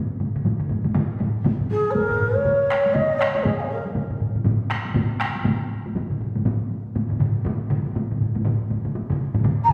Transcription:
0.10 taiko high
0.20 taiko low-mid, taiko mid, taiko high
0.36 taiko low-mid, taiko mid, taiko high
0.45 taiko low-mid, taiko mid, taiko high
0.60 taiko low-mid, taiko mid, taiko high
0.69 taiko low-mid, taiko mid, taiko high
0.84 taiko low-mid, taiko mid, taiko high
0.94 taiko low-mid, taiko mid, taiko high
1.11 taiko high
1.20 taiko low-mid, taiko mid, taiko high
1.36 taiko high
1.44 taiko low-mid, taiko mid, taiko high
1.59 taiko low-mid, taiko mid, taiko high
1.70 shakuhachi G#4, taiko high
1.85 taiko high
1.90 shakuhachi A#4 C#5, taiko mid
1.95 taiko low-mid, taiko high
2.10 taiko low-mid, taiko mid
2.20 taiko low-mid, taiko mid
2.35 shakuhachi C#5, taiko low-mid, taiko mid, taiko high
2.45 taiko low-mid, taiko mid, taiko high
2.70 taiko rim, taiko high
2.72 taiko rim
2.86 taiko high
2.93 shakuhachi D#5, taiko low-mid, taiko mid, taiko high
3.19 shakuhachi C#5, taiko rim
3.35 taiko high
3.43 shakuhachi G#4, taiko low-mid, taiko mid, taiko high
3.58 shakuhachi F5 G#5
3.64 shakuhachi C#5 D#5
3.68 shakuhachi G#4 A#4
3.86 taiko high
3.95 taiko low-mid, taiko mid, taiko high
4.10 taiko low-mid, taiko mid
4.20 taiko low-mid, taiko mid
4.35 taiko low-mid, taiko mid, taiko high
4.44 taiko low-mid, taiko mid, taiko high
4.70 taiko rim, taiko high
4.85 taiko high
4.94 taiko low-mid, taiko mid, taiko high
5.20 taiko rim
5.35 taiko high
5.44 taiko low-mid, taiko mid, taiko high
5.86 taiko high
5.95 taiko low-mid, taiko mid, taiko high
6.10 taiko low-mid, taiko mid
6.21 taiko low-mid, taiko mid
6.35 taiko low-mid, taiko mid, taiko high
6.45 taiko low-mid, taiko mid, taiko high
6.71 taiko high
6.95 taiko low-mid, taiko mid, taiko high
7.10 taiko low-mid, taiko mid
7.20 taiko low-mid, taiko mid
7.36 taiko high
7.45 taiko low-mid, taiko mid, taiko high
7.70 taiko low-mid, taiko mid
7.86 taiko high
7.95 taiko low-mid, taiko mid, taiko high
8.11 taiko low-mid, taiko mid
8.21 taiko low-mid, taiko mid
8.35 taiko low-mid, taiko mid, taiko high
8.45 taiko low-mid, taiko mid, taiko high
8.70 taiko low-mid, taiko mid, taiko high
8.85 taiko low-mid, taiko mid, taiko high
8.95 taiko high
9.10 taiko low-mid, taiko mid
9.35 taiko low-mid, taiko mid, taiko high
9.44 taiko low-mid, taiko mid, taiko high
9.64 shakuhachi A#5
9.68 shakuhachi G#5, taiko low-mid, taiko mid

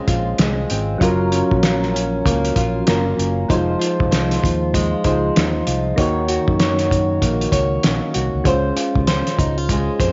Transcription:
Already playing: nylon-string guitar G#3 C4, synth keys G#3 C#4 F4 C5
0.08 fingered electric bass A#1, nylon-string guitar F4, kick, closed hi-hat
0.38 fingered electric bass C2, nylon-string guitar G#3, snare, closed hi-hat
0.70 fingered electric bass G#1, nylon-string guitar C4, closed hi-hat
0.98 fingered electric bass F#1, synth keys F#3 C#4 F4, nylon-string guitar F#3, kick, closed hi-hat
1.02 nylon-string guitar F4, synth keys A#4
1.32 nylon-string guitar C#4, closed hi-hat
1.51 fingered electric bass A#1, kick
1.63 nylon-string guitar F4, snare, closed hi-hat
1.83 snare
1.94 nylon-string guitar C#4, closed hi-hat
2.25 fingered electric bass C#2, nylon-string guitar A#3, kick, closed hi-hat
2.45 closed hi-hat
2.56 fingered electric bass A#1, nylon-string guitar F4, kick, closed hi-hat
2.87 fingered electric bass F#1, synth keys F#3 C#4 F4 A#4, nylon-string guitar A#3, snare, closed hi-hat
3.17 fingered electric bass F#1, nylon-string guitar C#4, closed hi-hat
3.48 fingered electric bass F1, nylon-string guitar F3 C5, synth keys F#3 D#4 F4, kick, closed hi-hat
3.53 synth keys G#3 C5
3.79 nylon-string guitar F4, closed hi-hat
4.00 fingered electric bass F1, kick
4.11 fingered electric bass C2, nylon-string guitar C5, snare, closed hi-hat
4.31 snare, closed hi-hat
4.42 fingered electric bass D#2, nylon-string guitar F4, kick, closed hi-hat
4.74 nylon-string guitar G#3, kick, closed hi-hat
5.04 fingered electric bass C#2, synth keys G#3 D#4 F4 C5, nylon-string guitar C5, kick, closed hi-hat
5.36 fingered electric bass D#2, nylon-string guitar D#4, snare, closed hi-hat
5.67 fingered electric bass C2, nylon-string guitar F4, closed hi-hat
5.96 fingered electric bass D#2, nylon-string guitar D#3 C#5, synth keys A#3 D#4 F#4, kick, closed hi-hat
6.01 synth keys C#5
6.28 nylon-string guitar F#4, closed hi-hat
6.48 fingered electric bass F#2, kick
6.60 nylon-string guitar C#5, snare, closed hi-hat
6.79 snare, closed hi-hat
6.90 nylon-string guitar F#4, kick, closed hi-hat
7.22 fingered electric bass A#1, nylon-string guitar A#3, kick, closed hi-hat
7.41 closed hi-hat
7.52 fingered electric bass C#2, nylon-string guitar C#5, kick, closed hi-hat
7.83 fingered electric bass A#1, nylon-string guitar C#4, snare, closed hi-hat
8.14 fingered electric bass C2, nylon-string guitar F#4, closed hi-hat
8.34 fingered electric bass C#2
8.44 fingered electric bass C#2, synth keys G#3 C#4 F4, nylon-string guitar C5, kick, closed hi-hat
8.49 synth keys C5
8.76 nylon-string guitar F4, closed hi-hat
8.95 fingered electric bass C#2, kick
9.07 nylon-string guitar C5, snare, closed hi-hat
9.27 snare, closed hi-hat
9.38 fingered electric bass C#2, nylon-string guitar D#4, kick, closed hi-hat
9.58 nylon-string guitar F4
9.69 nylon-string guitar G#3, kick, closed hi-hat
10.00 fingered electric bass F2, nylon-string guitar C5, kick, closed hi-hat

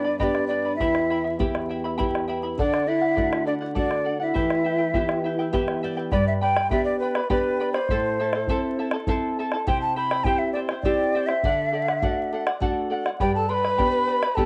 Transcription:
Already playing: nylon-string guitar G2 B3 D4 G4, pan flute D4, quena D5
0.04 charango B4 D5 B5, bombo rim
0.19 nylon-string guitar B3 D4 G4, pan flute D4, charango G4 B4 D5 G5 B5, quena D#5, bombo low
0.24 quena D5
0.35 bombo rim
0.47 pan flute D4, charango B4 D5 G5 B5, quena D5
0.65 charango B4 D5 B5
0.76 pan flute E4, quena E5
0.80 nylon-string guitar E2, charango E4 G4 E5 G5 B5, bombo low
0.95 bombo rim
1.10 charango E4 E5 G5 B5, bombo rim
1.24 charango E4 E5 B5
1.39 nylon-string guitar B3 E4 G4, charango E4 G4 E5 G5 B5, bombo low
1.55 bombo rim
1.69 charango E4 E5 G5 B5, bombo rim
1.84 charango E4 E5 B5, bombo rim
1.98 nylon-string guitar B3 E4 G4, charango E4 G4 E5 G5 B5, bombo low
2.15 bombo rim
2.28 charango E4 E5 G5 B5
2.43 charango E4 E5 B5
2.58 nylon-string guitar D3, pan flute D4, charango A4 D5 F#5, quena D5, bombo low
2.74 bombo rim
2.87 pan flute E4, charango A4 D5 F#5, quena E5, bombo rim
3.01 charango D5 F#5
3.16 nylon-string guitar A3 D4 F#4, charango A4 D5 F#5, bombo low
3.33 bombo rim
3.45 pan flute D4, charango A4 D5 F#5, quena D5, bombo rim
3.61 charango D5 F#5, bombo rim
3.75 nylon-string guitar A3 D4 F#4, pan flute D4, charango A4 D5 F#5, quena D5, bombo low
3.91 bombo rim
4.04 charango A4 D5 F#5
4.20 pan flute E4, charango D5 F#5, quena E5
4.34 nylon-string guitar E3, charango E4 G4 B4 E5 G5, bombo rim, bombo low
4.50 bombo rim
4.64 charango E4 B4 E5 G5
4.78 charango E4 B4 G5
4.94 nylon-string guitar B3 E4 G4, charango E4 G4 B4 E5 G5, bombo rim, bombo low
5.09 bombo rim
5.24 charango E4 B4 E5 G5, bombo rim
5.39 charango E4 B4 G5
5.53 nylon-string guitar B3 E4 G4 E5, charango E4 G4 B4 E5 G5, bombo rim, bombo low
5.68 bombo rim
5.83 charango E4 B4 E5 G5, nylon-string guitar D5
5.97 charango E4 B4 G5
6.12 nylon-string guitar G2, charango G4 B4 D5 G5 B5, quena D5, bombo rim, bombo low
6.27 quena E5
6.41 charango B4 D5 G5 B5, quena G5
6.56 charango B4 D5 B5, bombo rim
6.70 nylon-string guitar B3 D4 G4, charango G4 B4 D5 G5 B5, quena E5, bombo low
6.84 quena D5
6.99 quena B4, charango B4 D5 G5
7.03 charango B5
7.15 charango B4 D5 B5, bombo rim
7.29 nylon-string guitar B3 D4 G4, charango G4 B4 D5 G5 B5, quena B4, bombo low
7.60 charango B4 D5 G5 B5
7.73 quena C5, charango D5 B5, bombo rim
7.77 charango B4
7.89 nylon-string guitar A2, charango E4 A4 C5 E5 A5, bombo rim, bombo low
8.20 charango E4 A4 E5 A5
8.33 charango E4 A4 A5, bombo rim
8.47 nylon-string guitar C4 E4 A4, charango E4 A4 C5 E5 A5, bombo low
8.79 charango E4 A4 E5 A5
8.91 charango E4 A4 A5, bombo rim
9.07 nylon-string guitar C4 E4 A4, charango E4 A4 C5 E5 A5, bombo low
9.39 charango E4 A4 E5 A5
9.52 charango E4 A4 A5, bombo rim
9.67 nylon-string guitar C3, charango E4 G4 C5 E5 G5, quena G5, bombo rim, bombo low
9.81 quena A5
9.96 charango E4 C5 E5 G5, quena B5
10.11 charango E4 C5 G5, bombo rim
10.24 nylon-string guitar C4 E4 G4, charango E4 G4 C5 E5 G5, quena G5, bombo low
10.38 quena E5
10.53 charango E4 C5 E5 G5, quena D5
10.69 charango E4 C5 G5, bombo rim
10.82 nylon-string guitar C4 E4 G4, charango E4 G4 C5 E5 G5, quena D5, bombo low
11.15 charango E4 C5 E5 G5
11.26 charango E4 C5 G5, quena E5, bombo rim
11.43 nylon-string guitar D3, charango A4 D5 F#5, bombo low
11.73 charango A4 D5 F#5
11.88 charango D5 F#5, bombo rim
12.02 nylon-string guitar A3 D4 F#4, charango A4 D5 F#5, bombo low
12.32 charango A4 D5 F#5
12.47 charango D5 F#5, bombo rim
12.60 nylon-string guitar A3 D4 F#4, charango A4 D5 F#5, bombo low
12.90 charango A4 D5 F#5
13.06 charango D5 F#5, bombo rim
13.20 nylon-string guitar G2, charango G4 B4 D5 G5 B5, pan flute G4, quena G5, bombo rim, bombo low
13.35 pan flute A4, quena A5
13.48 pan flute B4, charango B4 D5 G5 B5, quena C6
13.53 quena B5
13.64 charango B4 D5 B5, bombo rim
13.78 nylon-string guitar B3 D4 G4, charango G4 B4 D5 G5 B5, bombo low
14.07 charango B4 D5 G5 B5
14.22 charango B4 D5 B5, bombo rim
14.35 nylon-string guitar B3 D4 G4, charango G4 B4 D5 G5 B5, pan flute A4, quena A5, bombo low

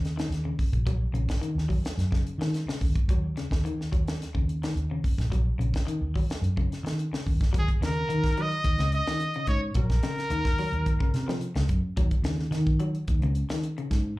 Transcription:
Already playing: fingered electric bass D#2, clean electric guitar C#3
0.05 snare, closed hi-hat
0.17 clean electric guitar D#3, snare, closed hi-hat
0.29 fingered electric bass D#2, snare, closed hi-hat
0.45 clean electric guitar C#3
0.59 kick, open hi-hat
0.72 fingered electric bass A#1, kick, closed hi-hat
0.87 clean electric guitar F#3, kick, closed hi-hat
1.13 fingered electric bass A#1, clean electric guitar C#3, closed hi-hat
1.29 kick, snare, closed hi-hat
1.41 clean electric guitar D#3, muted fingered electric bass stroke, closed hi-hat
1.55 fingered electric bass D#2, snare
1.69 clean electric guitar F#3, kick, open hi-hat
1.84 muted fingered electric bass stroke, snare, closed hi-hat
1.97 fingered electric bass F#2, snare, closed hi-hat
2.12 clean electric guitar C#3, kick, snare
2.27 closed hi-hat
2.38 fingered electric bass D#3, clean electric guitar D#3, snare, closed hi-hat
2.54 snare, closed hi-hat
2.66 clean electric guitar C#3, muted fingered electric bass stroke, snare
2.81 fingered electric bass D#2, kick, open hi-hat
2.96 kick, closed hi-hat
3.08 fingered electric bass D#2, clean electric guitar F#3, kick, closed hi-hat
3.37 clean electric guitar C#3, snare, closed hi-hat
3.51 fingered electric bass D#2, kick, snare
3.65 clean electric guitar D#3, closed hi-hat
3.81 snare
3.92 fingered electric bass D#2, clean electric guitar F#3, kick, closed hi-hat
4.08 snare, closed hi-hat
4.22 snare, closed hi-hat
4.35 fingered electric bass D#2, clean electric guitar C#3, kick
4.49 closed hi-hat
4.63 clean electric guitar D#3, snare, closed hi-hat
4.75 fingered electric bass D#2, closed hi-hat
4.91 clean electric guitar C#3
5.04 kick, open hi-hat
5.18 fingered electric bass A#1, kick, snare, closed hi-hat
5.32 clean electric guitar F#3, kick, closed hi-hat
5.58 fingered electric bass A#1, clean electric guitar C#3, closed hi-hat
5.74 kick, snare, closed hi-hat
5.87 clean electric guitar D#3, muted fingered electric bass stroke, closed hi-hat
6.01 fingered electric bass D#2
6.16 clean electric guitar F#3, kick, open hi-hat
6.30 muted fingered electric bass stroke, snare, closed hi-hat
6.42 fingered electric bass F#2, closed hi-hat
6.57 clean electric guitar C#3, kick
6.72 snare, closed hi-hat
6.83 fingered electric bass D#3, muted clean electric guitar stroke, snare, closed hi-hat
6.99 closed hi-hat
7.12 clean electric guitar C#3, muted fingered electric bass stroke, snare
7.26 fingered electric bass D#2, kick, open hi-hat
7.41 kick, snare, closed hi-hat
7.53 fingered electric bass D#2, clean electric guitar F#3, kick, closed hi-hat
7.58 trumpet G#4
7.68 kick, closed hi-hat
7.81 fingered electric bass D#2, clean electric guitar C#3, snare, closed hi-hat
7.85 trumpet A#4
8.09 clean electric guitar D#3, fingered electric bass D#3, closed hi-hat
8.24 kick, snare, closed hi-hat
8.37 clean electric guitar F#3, closed hi-hat
8.42 trumpet D#5
8.51 closed hi-hat
8.64 fingered electric bass D#2, kick, closed hi-hat
8.78 fingered electric bass C#2, clean electric guitar C#3, snare, closed hi-hat
8.92 trumpet D#5, closed hi-hat
9.07 clean electric guitar D#3, snare, closed hi-hat
9.20 closed hi-hat
9.34 clean electric guitar C#3, closed hi-hat
9.47 fingered electric bass G#2, trumpet C#5, kick, closed hi-hat
9.74 fingered electric bass A#1, clean electric guitar F#3, trumpet A#4, kick, closed hi-hat
9.90 kick, snare, closed hi-hat
10.03 clean electric guitar C#3, snare, closed hi-hat
10.18 snare, closed hi-hat
10.30 fingered electric bass D#2, clean electric guitar D#3, closed hi-hat
10.45 kick, snare, closed hi-hat
10.58 clean electric guitar F#3, open hi-hat
10.72 fingered electric bass D#2, closed hi-hat
10.86 kick, closed hi-hat
11.00 clean electric guitar C#3, kick
11.14 fingered electric bass C3, snare, closed hi-hat
11.28 clean electric guitar F3, snare
11.41 closed hi-hat
11.55 fingered electric bass C#2, clean electric guitar C#3, snare, closed hi-hat
11.69 fingered electric bass F#2, kick, closed hi-hat
11.97 fingered electric bass D#2, clean electric guitar F#3, kick, closed hi-hat
12.11 kick, closed hi-hat
12.22 fingered electric bass D#2, clean electric guitar C#3, snare, closed hi-hat
12.39 snare
12.51 fingered electric bass D#3, clean electric guitar D#3, snare, closed hi-hat
12.66 kick, closed hi-hat
12.80 clean electric guitar F#3, closed hi-hat
12.95 closed hi-hat
13.08 fingered electric bass D#2, kick, closed hi-hat
13.20 fingered electric bass C#2, clean electric guitar C#3, closed hi-hat
13.35 closed hi-hat
13.49 clean electric guitar D#3, snare, closed hi-hat
13.63 closed hi-hat
13.78 clean electric guitar C#3, closed hi-hat
13.91 fingered electric bass G#2, kick, snare, closed hi-hat

